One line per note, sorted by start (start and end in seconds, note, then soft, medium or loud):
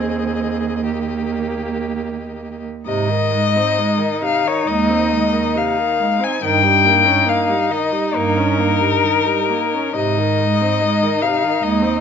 0.00 2.66 D#2 medium
0.00 0.81 C4 medium
0.00 0.82 G#4 medium
0.00 2.62 D#5 medium
0.85 2.62 A#3 medium
0.85 2.62 G4 medium
2.86 3.64 G#2 medium
2.86 3.10 C3 medium
2.86 6.38 D#4 medium
2.86 4.19 D#5 loud
3.09 3.33 D#3 medium
3.31 3.57 G#3 medium
3.56 3.80 C4 medium
3.79 4.00 G#3 medium
3.98 4.23 D#3 medium
4.21 4.46 C3 medium
4.21 4.49 F5 loud
4.45 4.67 D#3 medium
4.45 4.69 C#5 medium
4.67 5.42 D#2 medium
4.67 4.91 G#3 medium
4.67 5.58 D#5 medium
4.89 5.11 C4 medium
5.10 5.33 G#3 medium
5.32 5.57 D#3 medium
5.55 5.79 C3 medium
5.55 6.25 F5 medium
5.77 6.01 D#3 medium
5.99 6.21 G#3 medium
6.20 6.42 C4 medium
6.20 6.44 G#5 medium
6.43 7.13 G2 medium
6.43 6.65 D#3 medium
6.43 9.93 D#4 medium
6.43 7.30 G5 loud
6.64 6.87 G3 medium
6.85 7.07 A#3 medium
7.05 7.27 C#4 medium
7.25 7.50 A#3 medium
7.25 7.73 F5 medium
7.48 7.71 G3 medium
7.69 7.94 D#3 medium
7.69 8.17 D#5 medium
7.92 8.14 G3 medium
8.15 8.88 G2 medium
8.15 8.39 A#3 medium
8.15 9.95 A#4 loud
8.37 8.60 C#4 medium
8.59 8.81 A#3 medium
8.80 9.05 G3 medium
9.03 9.27 D#3 medium
9.25 9.51 G3 medium
9.50 9.76 A#3 soft
9.74 9.95 C#4 medium
9.96 10.68 G#2 medium
9.96 10.19 C3 medium
9.96 12.00 D#4 medium
9.96 11.23 D#5 loud
10.18 10.41 D#3 medium
10.40 10.63 G#3 medium
10.61 10.82 C4 medium
10.81 11.03 G#3 medium
11.02 11.24 D#3 medium
11.22 11.45 C3 soft
11.22 11.64 F5 medium
11.43 11.61 D#3 medium
11.62 12.00 D#2 medium
11.62 11.83 G#3 medium
11.62 12.00 D#5 medium
11.82 12.00 C4 medium